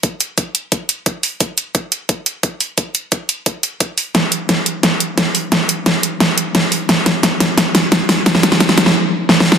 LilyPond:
\new DrumStaff \with { instrumentName = "Drums" } \drummode { \time 4/4 \tempo 4 = 175 <hh bd>8 hh8 <hh bd>8 hh8 <hh bd>8 hh8 <hh bd>8 hho8 | <hh bd>8 hh8 <hh bd>8 hh8 <hh bd>8 hh8 <hh bd>8 hho8 | <hh bd>8 hh8 <hh bd>8 hh8 <hh bd>8 hh8 <hh bd>8 hho8 | <hh bd sn>8 hh8 <hh bd sn>8 hh8 <hh bd sn>8 hh8 <hh bd sn>8 hho8 |
<hh bd sn>8 hh8 <hh bd sn>8 hh8 <hh bd sn>8 hh8 <hh bd sn>8 hho8 | <hh bd sn>8 <hh sn>8 <hh bd sn>8 <hh sn>8 <hh bd sn>8 <hh sn>8 <hh bd sn>8 <hho sn>8 | <hh bd sn>16 sn16 <hh sn>16 sn16 <hh bd sn>16 sn16 <hh sn>16 sn16 r4 \tuplet 3/2 { sn8 sn8 sn8 } | }